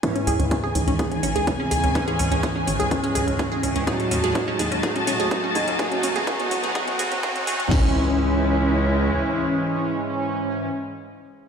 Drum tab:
CC |----------------|----------------|----------------|----------------|
HH |xxoxx-oxxxoxx-ox|xxoxx-oxxxoxx-ox|xxoxx-oxxxoxx-ox|xxoxxxoxxxoxxxox|
SD |----------------|----------------|----------------|----------------|
BD |o---o---o---o---|o---o---o---o---|o---o---o---o---|o---o---o---o---|

CC |x---------------|----------------|
HH |----------------|----------------|
SD |o---------------|----------------|
BD |o---------------|----------------|